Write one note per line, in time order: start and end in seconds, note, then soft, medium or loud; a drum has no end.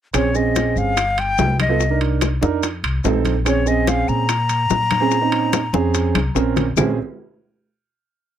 0.13 0.72 A#1 medium
0.13 0.28 C4 medium
0.13 0.28 C#4 medium
0.13 0.29 G#4 medium
0.13 0.37 C#5 medium
0.13 high bongo medium
0.13 high conga soft
0.13 high timbale medium
0.13 claves medium
0.13 maracas medium
0.34 0.93 C4 medium
0.34 0.93 C#4 medium
0.34 0.93 G#4 medium
0.34 0.79 D#5 medium
0.34 high conga soft
0.34 maracas soft
0.56 high bongo medium
0.56 high conga loud
0.56 high timbale medium
0.56 maracas medium
0.76 1.34 G1 medium
0.76 1.21 F5 medium
0.76 high conga soft
0.76 maracas soft
0.97 high bongo medium
0.97 high conga soft
0.97 high timbale medium
0.97 claves medium
0.97 maracas medium
1.18 1.60 G5 loud
1.18 high conga soft
1.18 high timbale medium
1.38 2.36 C2 medium
1.38 high bongo medium
1.38 low bongo medium
1.38 high conga medium
1.38 low timbale medium
1.38 maracas medium
1.59 1.99 D#5 medium
1.59 high conga medium
1.59 high timbale medium
1.59 claves medium
1.59 maracas soft
1.69 1.80 B3 medium
1.69 1.80 F4 medium
1.69 1.80 A4 medium
1.80 high bongo medium
1.80 high conga soft
1.80 maracas medium
1.90 2.27 D4 medium
1.90 2.27 D#4 medium
1.90 2.27 A#4 medium
2.01 high bongo soft
2.01 high conga soft
2.01 high timbale medium
2.21 high bongo medium
2.21 high conga medium
2.21 high timbale medium
2.21 claves medium
2.21 maracas medium
2.41 2.81 F2 medium
2.41 2.63 D4 medium
2.41 2.63 D#4 medium
2.41 2.63 A#4 medium
2.41 high bongo soft
2.41 high conga loud
2.41 maracas soft
2.63 high bongo medium
2.63 high conga soft
2.63 high timbale medium
2.63 maracas medium
2.84 3.03 C2 medium
2.84 high conga soft
2.84 high timbale medium
2.84 claves medium
3.04 4.02 A#1 medium
3.04 3.33 C4 medium
3.04 3.34 D#4 medium
3.04 3.34 A4 medium
3.04 high bongo medium
3.04 low bongo medium
3.04 high conga soft
3.04 low timbale medium
3.04 maracas medium
3.25 high bongo soft
3.25 high conga medium
3.25 high timbale medium
3.25 maracas soft
3.45 3.60 C4 medium
3.45 3.60 C#4 medium
3.45 3.61 G#4 medium
3.45 3.69 C#5 medium
3.45 high bongo medium
3.45 high conga soft
3.45 high timbale medium
3.45 claves medium
3.45 maracas medium
3.66 4.24 C4 medium
3.66 4.25 C#4 medium
3.66 4.25 G#4 medium
3.66 3.90 D#5 medium
3.66 high conga soft
3.66 maracas medium
3.87 4.10 F5 loud
3.87 high bongo medium
3.87 high conga medium
3.87 high timbale medium
3.87 maracas medium
4.08 4.66 A#2 medium
4.08 6.36 A#5 loud
4.08 high conga soft
4.08 maracas soft
4.29 high bongo medium
4.29 high conga soft
4.29 high timbale medium
4.29 claves medium
4.29 maracas medium
4.49 high conga soft
4.49 high timbale medium
4.49 maracas medium
4.70 5.68 A#2 medium
4.70 high bongo medium
4.70 low bongo medium
4.70 high conga medium
4.70 maracas medium
4.91 high conga medium
4.91 high timbale medium
4.91 claves medium
4.91 maracas soft
5.00 5.15 C4 medium
5.00 5.16 C#4 medium
5.00 5.16 G#4 medium
5.11 high bongo medium
5.11 high conga soft
5.11 maracas medium
5.21 5.58 C4 medium
5.21 5.58 C#4 medium
5.21 5.58 D#4 medium
5.32 high bongo soft
5.32 high conga soft
5.32 high timbale medium
5.53 high bongo medium
5.53 high conga loud
5.53 high timbale medium
5.53 claves medium
5.53 maracas medium
5.73 6.12 F2 medium
5.73 6.17 C4 medium
5.73 6.17 C#4 medium
5.73 6.18 G#4 loud
5.73 high bongo soft
5.73 high conga loud
5.73 maracas soft
5.94 high bongo medium
5.94 high conga soft
5.94 high timbale medium
5.94 maracas medium
6.15 6.34 C2 medium
6.15 high conga loud
6.15 high timbale medium
6.15 claves medium
6.35 6.72 A#1 medium
6.35 6.64 C4 medium
6.35 6.65 C#4 medium
6.35 6.65 A#4 medium
6.35 high bongo medium
6.35 low bongo medium
6.35 maracas medium
6.56 high bongo medium
6.56 low conga medium
6.56 high timbale medium
6.56 maracas soft
6.77 6.96 A#1 medium
6.77 6.97 C4 medium
6.77 6.97 C#4 medium
6.77 6.97 G#4 medium
6.77 low bongo loud
6.77 low conga medium
6.77 low timbale medium
6.77 claves medium
6.77 maracas medium